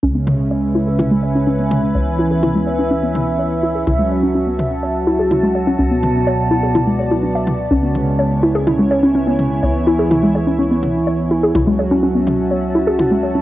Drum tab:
T2 |-o--o--o|--o--o--|o--o--o-|-o--o--o|

T2 |-o--o--o|--o--o--|o--o--o-|